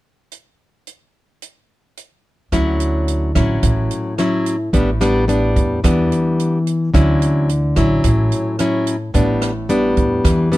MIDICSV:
0, 0, Header, 1, 4, 480
1, 0, Start_track
1, 0, Key_signature, 2, "major"
1, 0, Tempo, 551978
1, 273, Time_signature, 4, 2, 24, 8
1, 9196, End_track
2, 0, Start_track
2, 0, Title_t, "Nylon-string guitar"
2, 0, Program_c, 0, 24
2, 2194, Note_on_c, 0, 50, 46
2, 2199, Note_on_c, 0, 54, 54
2, 2203, Note_on_c, 0, 64, 50
2, 2204, Note_on_c, 0, 61, 40
2, 2877, Note_off_c, 0, 54, 0
2, 2878, Note_off_c, 0, 61, 0
2, 2880, Note_off_c, 0, 64, 0
2, 2915, Note_on_c, 0, 54, 48
2, 2918, Note_on_c, 0, 61, 48
2, 2922, Note_on_c, 0, 64, 48
2, 3131, Note_off_c, 0, 50, 0
2, 3158, Note_on_c, 0, 45, 43
2, 3596, Note_off_c, 0, 54, 0
2, 3597, Note_off_c, 0, 61, 0
2, 3600, Note_off_c, 0, 64, 0
2, 3641, Note_on_c, 0, 54, 45
2, 3645, Note_on_c, 0, 61, 50
2, 3647, Note_on_c, 0, 64, 50
2, 3960, Note_off_c, 0, 54, 0
2, 3962, Note_off_c, 0, 61, 0
2, 3963, Note_off_c, 0, 64, 0
2, 4093, Note_off_c, 0, 45, 0
2, 4114, Note_on_c, 0, 45, 47
2, 4119, Note_on_c, 0, 55, 47
2, 4119, Note_on_c, 0, 59, 49
2, 4123, Note_on_c, 0, 62, 56
2, 4257, Note_off_c, 0, 55, 0
2, 4259, Note_off_c, 0, 59, 0
2, 4259, Note_off_c, 0, 62, 0
2, 4355, Note_on_c, 0, 55, 57
2, 4358, Note_on_c, 0, 59, 54
2, 4359, Note_on_c, 0, 62, 62
2, 4557, Note_off_c, 0, 55, 0
2, 4557, Note_off_c, 0, 59, 0
2, 4559, Note_off_c, 0, 62, 0
2, 4591, Note_on_c, 0, 55, 52
2, 4596, Note_on_c, 0, 59, 50
2, 4600, Note_on_c, 0, 62, 57
2, 5035, Note_off_c, 0, 55, 0
2, 5037, Note_off_c, 0, 59, 0
2, 5039, Note_off_c, 0, 62, 0
2, 5052, Note_off_c, 0, 45, 0
2, 5075, Note_on_c, 0, 52, 46
2, 5077, Note_on_c, 0, 55, 50
2, 5081, Note_on_c, 0, 59, 46
2, 5083, Note_on_c, 0, 62, 52
2, 5721, Note_off_c, 0, 55, 0
2, 5722, Note_off_c, 0, 59, 0
2, 5725, Note_off_c, 0, 62, 0
2, 6012, Note_off_c, 0, 52, 0
2, 6031, Note_on_c, 0, 50, 53
2, 6036, Note_on_c, 0, 54, 46
2, 6037, Note_on_c, 0, 61, 46
2, 6041, Note_on_c, 0, 64, 61
2, 6512, Note_off_c, 0, 54, 0
2, 6514, Note_off_c, 0, 61, 0
2, 6516, Note_off_c, 0, 64, 0
2, 6751, Note_on_c, 0, 54, 55
2, 6757, Note_on_c, 0, 61, 50
2, 6762, Note_on_c, 0, 64, 56
2, 6971, Note_off_c, 0, 50, 0
2, 6995, Note_on_c, 0, 45, 44
2, 7436, Note_off_c, 0, 54, 0
2, 7438, Note_off_c, 0, 61, 0
2, 7441, Note_off_c, 0, 64, 0
2, 7477, Note_on_c, 0, 54, 49
2, 7481, Note_on_c, 0, 61, 53
2, 7482, Note_on_c, 0, 64, 47
2, 7787, Note_off_c, 0, 54, 0
2, 7787, Note_off_c, 0, 61, 0
2, 7789, Note_off_c, 0, 64, 0
2, 7932, Note_off_c, 0, 45, 0
2, 7948, Note_on_c, 0, 45, 48
2, 7949, Note_on_c, 0, 55, 46
2, 7951, Note_on_c, 0, 59, 45
2, 7957, Note_on_c, 0, 62, 52
2, 8261, Note_off_c, 0, 55, 0
2, 8264, Note_off_c, 0, 59, 0
2, 8265, Note_off_c, 0, 62, 0
2, 8429, Note_on_c, 0, 55, 51
2, 8435, Note_on_c, 0, 59, 55
2, 8437, Note_on_c, 0, 62, 60
2, 8889, Note_off_c, 0, 45, 0
2, 8908, Note_on_c, 0, 52, 44
2, 9115, Note_off_c, 0, 55, 0
2, 9116, Note_off_c, 0, 59, 0
2, 9118, Note_off_c, 0, 62, 0
2, 9146, Note_on_c, 0, 55, 54
2, 9149, Note_on_c, 0, 59, 51
2, 9154, Note_on_c, 0, 62, 55
2, 9196, Note_off_c, 0, 52, 0
2, 9196, Note_off_c, 0, 55, 0
2, 9196, Note_off_c, 0, 59, 0
2, 9196, Note_off_c, 0, 62, 0
2, 9196, End_track
3, 0, Start_track
3, 0, Title_t, "Upright bass"
3, 0, Program_c, 1, 32
3, 2193, Note_on_c, 1, 38, 77
3, 2879, Note_off_c, 1, 38, 0
3, 2914, Note_on_c, 1, 33, 81
3, 3137, Note_off_c, 1, 33, 0
3, 3152, Note_on_c, 1, 33, 78
3, 3376, Note_off_c, 1, 33, 0
3, 4113, Note_on_c, 1, 33, 79
3, 4799, Note_off_c, 1, 33, 0
3, 4836, Note_on_c, 1, 40, 79
3, 5059, Note_off_c, 1, 40, 0
3, 5077, Note_on_c, 1, 40, 84
3, 5299, Note_off_c, 1, 40, 0
3, 6035, Note_on_c, 1, 38, 82
3, 6721, Note_off_c, 1, 38, 0
3, 6752, Note_on_c, 1, 33, 70
3, 6977, Note_off_c, 1, 33, 0
3, 6990, Note_on_c, 1, 33, 80
3, 7216, Note_off_c, 1, 33, 0
3, 7949, Note_on_c, 1, 33, 78
3, 8638, Note_off_c, 1, 33, 0
3, 8668, Note_on_c, 1, 40, 72
3, 8895, Note_off_c, 1, 40, 0
3, 8907, Note_on_c, 1, 40, 76
3, 9135, Note_off_c, 1, 40, 0
3, 9196, End_track
4, 0, Start_track
4, 0, Title_t, "Drums"
4, 275, Note_on_c, 9, 42, 31
4, 362, Note_off_c, 9, 42, 0
4, 756, Note_on_c, 9, 42, 33
4, 843, Note_off_c, 9, 42, 0
4, 1236, Note_on_c, 9, 42, 37
4, 1323, Note_off_c, 9, 42, 0
4, 1716, Note_on_c, 9, 42, 31
4, 1803, Note_off_c, 9, 42, 0
4, 2193, Note_on_c, 9, 37, 44
4, 2193, Note_on_c, 9, 42, 44
4, 2195, Note_on_c, 9, 36, 47
4, 2280, Note_off_c, 9, 37, 0
4, 2280, Note_off_c, 9, 42, 0
4, 2282, Note_off_c, 9, 36, 0
4, 2435, Note_on_c, 9, 42, 40
4, 2522, Note_off_c, 9, 42, 0
4, 2677, Note_on_c, 9, 42, 41
4, 2764, Note_off_c, 9, 42, 0
4, 2916, Note_on_c, 9, 36, 45
4, 2917, Note_on_c, 9, 37, 51
4, 2917, Note_on_c, 9, 42, 40
4, 3003, Note_off_c, 9, 36, 0
4, 3004, Note_off_c, 9, 37, 0
4, 3004, Note_off_c, 9, 42, 0
4, 3155, Note_on_c, 9, 42, 63
4, 3156, Note_on_c, 9, 36, 62
4, 3242, Note_off_c, 9, 42, 0
4, 3243, Note_off_c, 9, 36, 0
4, 3397, Note_on_c, 9, 42, 39
4, 3484, Note_off_c, 9, 42, 0
4, 3638, Note_on_c, 9, 37, 48
4, 3638, Note_on_c, 9, 42, 36
4, 3724, Note_off_c, 9, 37, 0
4, 3724, Note_off_c, 9, 42, 0
4, 3879, Note_on_c, 9, 42, 39
4, 3966, Note_off_c, 9, 42, 0
4, 4117, Note_on_c, 9, 36, 49
4, 4117, Note_on_c, 9, 42, 48
4, 4204, Note_off_c, 9, 36, 0
4, 4204, Note_off_c, 9, 42, 0
4, 4358, Note_on_c, 9, 37, 52
4, 4358, Note_on_c, 9, 42, 37
4, 4445, Note_off_c, 9, 37, 0
4, 4445, Note_off_c, 9, 42, 0
4, 4599, Note_on_c, 9, 42, 37
4, 4686, Note_off_c, 9, 42, 0
4, 4837, Note_on_c, 9, 36, 50
4, 4838, Note_on_c, 9, 42, 36
4, 4924, Note_off_c, 9, 36, 0
4, 4925, Note_off_c, 9, 42, 0
4, 5078, Note_on_c, 9, 36, 54
4, 5080, Note_on_c, 9, 37, 58
4, 5080, Note_on_c, 9, 42, 58
4, 5165, Note_off_c, 9, 36, 0
4, 5167, Note_off_c, 9, 37, 0
4, 5167, Note_off_c, 9, 42, 0
4, 5321, Note_on_c, 9, 42, 35
4, 5408, Note_off_c, 9, 42, 0
4, 5561, Note_on_c, 9, 42, 35
4, 5648, Note_off_c, 9, 42, 0
4, 5799, Note_on_c, 9, 42, 35
4, 5886, Note_off_c, 9, 42, 0
4, 6037, Note_on_c, 9, 36, 52
4, 6038, Note_on_c, 9, 37, 43
4, 6038, Note_on_c, 9, 42, 47
4, 6124, Note_off_c, 9, 36, 0
4, 6125, Note_off_c, 9, 37, 0
4, 6125, Note_off_c, 9, 42, 0
4, 6277, Note_on_c, 9, 42, 40
4, 6364, Note_off_c, 9, 42, 0
4, 6517, Note_on_c, 9, 42, 39
4, 6604, Note_off_c, 9, 42, 0
4, 6751, Note_on_c, 9, 37, 47
4, 6751, Note_on_c, 9, 42, 40
4, 6753, Note_on_c, 9, 36, 46
4, 6838, Note_off_c, 9, 37, 0
4, 6838, Note_off_c, 9, 42, 0
4, 6840, Note_off_c, 9, 36, 0
4, 6990, Note_on_c, 9, 42, 61
4, 6992, Note_on_c, 9, 36, 57
4, 7077, Note_off_c, 9, 42, 0
4, 7079, Note_off_c, 9, 36, 0
4, 7233, Note_on_c, 9, 42, 39
4, 7320, Note_off_c, 9, 42, 0
4, 7470, Note_on_c, 9, 37, 44
4, 7470, Note_on_c, 9, 42, 39
4, 7556, Note_off_c, 9, 37, 0
4, 7556, Note_off_c, 9, 42, 0
4, 7712, Note_on_c, 9, 42, 43
4, 7799, Note_off_c, 9, 42, 0
4, 7951, Note_on_c, 9, 36, 50
4, 7951, Note_on_c, 9, 42, 52
4, 8038, Note_off_c, 9, 36, 0
4, 8038, Note_off_c, 9, 42, 0
4, 8189, Note_on_c, 9, 37, 54
4, 8189, Note_on_c, 9, 42, 42
4, 8276, Note_off_c, 9, 37, 0
4, 8276, Note_off_c, 9, 42, 0
4, 8430, Note_on_c, 9, 42, 40
4, 8517, Note_off_c, 9, 42, 0
4, 8670, Note_on_c, 9, 42, 35
4, 8671, Note_on_c, 9, 36, 43
4, 8757, Note_off_c, 9, 42, 0
4, 8758, Note_off_c, 9, 36, 0
4, 8910, Note_on_c, 9, 36, 57
4, 8912, Note_on_c, 9, 37, 57
4, 8912, Note_on_c, 9, 42, 57
4, 8997, Note_off_c, 9, 36, 0
4, 8999, Note_off_c, 9, 37, 0
4, 8999, Note_off_c, 9, 42, 0
4, 9155, Note_on_c, 9, 42, 37
4, 9196, Note_off_c, 9, 42, 0
4, 9196, End_track
0, 0, End_of_file